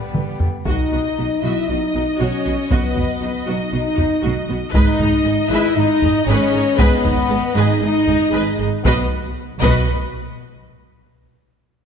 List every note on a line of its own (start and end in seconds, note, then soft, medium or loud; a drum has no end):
0.00 0.43 G3 medium
0.00 0.37 B3 medium
0.00 0.43 B3 medium
0.00 0.42 B4 medium
0.14 0.23 G1 soft
0.14 0.23 G2 soft
0.14 0.23 D3 soft
0.14 taiko mid medium
0.40 0.49 G1 soft
0.40 0.49 G2 soft
0.40 0.49 D3 soft
0.40 taiko low medium
0.66 0.76 B1 medium
0.66 0.75 B2 medium
0.66 1.40 D#4 medium
0.66 0.91 F#4 medium
0.66 1.40 D#5 medium
0.66 4.71 D#5 medium
0.66 taiko medium
0.92 1.00 B1 soft
0.92 1.01 B2 soft
0.92 1.00 B3 soft
0.92 1.00 F#4 soft
1.18 1.26 B1 soft
1.18 1.26 B2 soft
1.18 1.27 D#4 soft
1.18 1.27 F#4 soft
1.40 1.51 B1 medium
1.40 1.51 B2 medium
1.40 1.67 E4 medium
1.44 1.68 F#4 medium
1.44 1.70 E5 medium
1.67 1.77 B1 soft
1.67 1.78 B2 soft
1.67 1.77 B3 soft
1.67 2.19 D#4 medium
1.67 1.77 F#4 medium
1.67 2.19 D#5 medium
1.94 2.03 B1 soft
1.94 2.02 B2 soft
1.94 2.03 D#4 soft
1.94 2.03 F#4 soft
2.19 2.28 B1 medium
2.19 2.29 B2 medium
2.19 2.71 C#4 medium
2.19 2.44 F#4 medium
2.19 2.71 C#5 medium
2.45 2.54 B1 soft
2.45 2.53 B2 medium
2.45 2.53 B3 soft
2.45 2.53 F#4 medium
2.70 2.79 B1 medium
2.70 2.79 B2 medium
2.70 3.45 B3 medium
2.70 2.95 F#4 medium
2.70 3.48 B4 medium
2.70 taiko medium
2.96 3.04 B1 soft
2.96 3.05 B2 soft
2.96 3.04 B3 soft
2.96 3.05 F#4 medium
2.96 taiko low soft
3.21 3.30 B1 soft
3.21 3.30 B2 soft
3.21 3.29 D#4 soft
3.21 3.29 F#4 soft
3.46 3.56 B1 medium
3.46 3.56 B2 medium
3.46 3.71 D#4 medium
3.46 3.71 F#4 medium
3.46 3.71 D#5 medium
3.72 3.81 B1 medium
3.72 3.81 B2 medium
3.72 3.81 B3 medium
3.72 4.47 D#4 loud
3.72 3.81 F#4 medium
3.72 4.47 D#5 medium
3.97 4.06 B1 soft
3.97 4.07 B2 medium
3.97 4.05 D#4 medium
3.97 4.05 F#4 medium
3.97 taiko low soft
4.22 4.31 B1 medium
4.22 4.33 B2 medium
4.22 4.47 F#4 medium
4.48 4.57 B1 medium
4.48 4.58 B2 medium
4.48 4.56 B3 medium
4.48 4.56 F#4 medium
4.73 4.81 G#1 medium
4.73 4.84 G#2 medium
4.73 5.46 D#4 loud
4.73 4.98 G#4 medium
4.73 4.98 B4 medium
4.73 5.46 D#5 medium
4.73 8.61 D#5 medium
4.73 taiko medium
4.99 5.07 G#1 medium
4.99 5.09 G#2 medium
4.99 5.08 D#4 medium
4.99 5.08 G#4 medium
4.99 taiko low soft
5.24 5.32 G#1 medium
5.24 5.34 G#2 medium
5.24 5.33 G#4 medium
5.50 5.58 G#1 medium
5.50 5.59 G#2 medium
5.50 5.75 E4 loud
5.50 5.75 G#4 medium
5.50 5.75 B4 medium
5.50 5.76 E5 medium
5.75 5.84 G#1 medium
5.75 5.84 G#2 medium
5.75 6.27 D#4 loud
5.75 5.84 D#4 medium
5.75 5.84 G#4 medium
5.75 6.26 D#5 loud
6.02 6.10 G#1 medium
6.02 6.10 G#2 medium
6.02 6.11 G#4 medium
6.02 taiko low soft
6.25 6.35 G#1 loud
6.25 6.36 G#2 loud
6.25 6.77 C#4 loud
6.25 6.51 G#4 medium
6.25 6.52 B4 medium
6.25 6.79 C#5 medium
6.52 6.61 G#1 medium
6.52 6.62 G#2 medium
6.52 6.61 D#4 medium
6.52 6.60 G#4 medium
6.77 6.88 G#1 medium
6.77 6.86 G#2 medium
6.77 7.55 B3 loud
6.77 7.02 G#4 loud
6.77 7.55 B4 medium
6.77 7.02 B4 loud
6.77 taiko loud
7.04 7.13 G#1 medium
7.04 7.12 G#2 medium
7.04 7.12 D#4 medium
7.04 7.12 G#4 medium
7.04 taiko low medium
7.29 7.39 G#1 medium
7.29 7.37 G#2 medium
7.29 7.38 G#4 medium
7.54 7.64 G#1 medium
7.54 7.62 G#2 medium
7.54 7.80 D#4 loud
7.54 7.79 G#4 medium
7.54 7.79 B4 medium
7.54 7.81 D#5 medium
7.81 7.90 G#1 medium
7.81 7.89 G#2 medium
7.81 8.57 D#4 loud
7.81 7.90 D#4 medium
7.81 7.89 G#4 medium
7.81 8.58 D#5 medium
8.07 8.15 G#1 medium
8.07 8.15 G#2 medium
8.07 8.16 G#4 medium
8.07 taiko low soft
8.33 8.41 G#1 medium
8.33 8.41 G#2 medium
8.33 8.58 G#4 medium
8.33 8.57 B4 medium
8.59 8.67 G#1 medium
8.59 8.68 G#2 medium
8.59 8.68 D#4 medium
8.59 8.68 G#4 medium
8.82 8.99 B1 medium
8.82 9.00 B2 medium
8.82 9.05 B3 medium
8.82 9.00 B4 medium
8.82 taiko loud
8.86 9.00 F#4 medium
8.86 9.00 B4 medium
8.86 9.00 D#5 medium
9.61 9.90 B1 medium
9.61 9.90 B2 medium
9.61 9.91 F#4 medium
9.61 9.90 B4 medium
9.61 9.91 B4 medium
9.61 9.90 D#5 medium
9.61 taiko loud